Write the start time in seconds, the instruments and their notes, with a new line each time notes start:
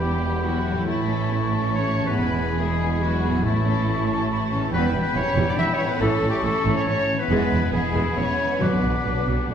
Already playing: double bass section E1, cello section E2, harp E3 B3 E4 B4, trombone section E3 B3, oboe G5, flute B5
0.00 viola section E3 B3, french horn section G3, violin section E4 G4, clarinet G4
0.23 viola section G3, violin section B3 G4
0.44 viola section E3 B3, french horn section F#3, violin section E4 F#4, clarinet F#4
0.66 viola section G3, violin section B3 G4
0.70 harp A2
0.75 harp C#4
0.79 harp E4
0.84 cello section A2, viola section A3, clarinet E4, harp A4, oboe A5, flute C#6
0.88 double bass section A1, french horn section E3, trombone section C#4, violin section E4
1.08 viola section E3 C#4, violin section C#4 A4
1.31 viola section A3, violin section E4
1.52 viola section E3 C#4, violin section C#4 A4
1.74 viola section A3, french horn section C#4, violin section E4 C#5, clarinet C#5
1.96 harp E2, viola section E3 C#4, violin section C#4 A4
2.04 harp B3, french horn section B3, violin section B4, clarinet B4
2.09 harp E4
2.13 cello section E2, trombone section E3 G#3, harp G#4
2.17 double bass section E1, viola section G#3, violin section E4, oboe G#5, flute B5
2.38 viola section E3 B3, violin section B3 G#4
2.59 viola section G#3, french horn section G#3, violin section E4 G#4, clarinet G#4
2.82 viola section E3 B3, violin section B3 G#4
3.02 french horn section F#3, viola section G#3, violin section E4 F#4, clarinet F#4
3.23 viola section E3 B3, violin section B3 G#4
3.27 harp A2
3.32 harp C#4
3.36 harp E4
3.41 cello section A2, harp A4
3.45 double bass section A1, french horn section E3, viola section A3, trombone section C#4, clarinet E4, violin section E4, oboe A5, flute C#6
3.67 viola section E3 C#4, violin section C#4 A4
3.88 viola section A3, violin section E4
4.10 viola section E3 C#4, violin section C#4 A4
4.31 viola section A3, violin section E4
4.52 harp E2, viola section E3 C#4, violin section C#4 A4
4.59 harp B3
4.63 harp E4
4.68 cello section E2, harp G4, flute B5
4.72 double bass section E1, viola section E3 G3, trombone section G3 B3, french horn section B3, violin section B3 E4 B4, clarinet B4, oboe G5
4.93 double bass section E1, cello section E2, viola section E3 G3
5.02 french horn section B3, clarinet B4, violin section B4
5.15 double bass section E1, cello section E2, viola section E3 G3, french horn section C#4, clarinet C#5, violin section C#5
5.36 double bass section E1, cello section E2, viola section E3 G3
5.47 french horn section D4, violin section D5, clarinet D5
5.57 double bass section E1, cello section E2, viola section E3 G3, french horn section E4, clarinet E5, violin section E5
5.73 french horn section C#4, clarinet C#5, violin section C#5
5.82 harp A2
5.87 french horn section B3, harp C#4, clarinet B4, violin section B4
5.91 harp E4
5.96 harp A4
6.00 double bass section A1, cello section A2, trombone section E3 C#4, viola section E3 A3, french horn section A3, violin section C#4 A4, clarinet A4, oboe A5, flute C#6
6.22 double bass section A1, cello section A2, viola section E3 A3
6.29 french horn section G3, clarinet G4, violin section G4
6.43 double bass section A1, cello section A2, viola section E3 A3, french horn section A3, clarinet A4, violin section A4
6.64 double bass section A1, cello section A2, viola section E3 A3
6.76 french horn section C#4, clarinet C#5, violin section C#5
6.86 double bass section A1, cello section A2, viola section E3 A3, french horn section C#4, clarinet C#5, violin section C#5
7.12 harp E3
7.17 harp B3, french horn section B3, clarinet B4, violin section B4
7.21 harp E4
7.26 cello section E2, violin section B3 E4, harp G#4
7.30 double bass section E1, trombone section E3 G#3, viola section E3 G#3, oboe G#5, flute B5
7.51 double bass section E1, cello section E2, viola section E3 G#3
7.73 double bass section E1, cello section E2, viola section E3 G#3, french horn section G#3, clarinet G#4, violin section G#4, oboe G#5, flute B5
7.94 double bass section E1, cello section E2, viola section E3 G#3
8.15 double bass section E1, cello section E2, viola section E3 G#3, french horn section C#4, clarinet C#5, violin section C#5
8.43 harp B2
8.48 harp B3
8.52 harp D4
8.57 timpani B2, viola section F#3, violin section D4, harp F#4
8.61 double bass section B1, cello section B2, trombone section D3 F#3, french horn section B3, violin section B4, clarinet B4, oboe F#5, flute D6
8.83 double bass section B1, cello section B2, viola section F#3
9.04 double bass section B1, cello section B2, viola section F#3
9.27 double bass section B1, cello section B2, viola section G3
9.49 double bass section B1, cello section B2, viola section A3